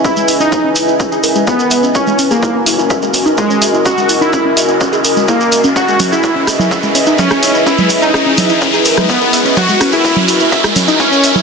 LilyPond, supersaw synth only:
\new Staff \with { instrumentName = "Supersaw synth" } { \time 4/4 \key cis \dorian \tempo 4 = 126 e'8 r16 dis'8 r4. r16 b8. r16 | cis'8 r16 ais8 r4. r16 gis8. r16 | fis'8 r16 e'8 r4. r16 ais8. r16 | fis'8 r16 e'8 r4. r16 cis'8. r16 |
e'8 r16 dis'8 r4. r16 b8. r16 | fis'8 r16 e'8 r4. r16 cis'8. r16 | }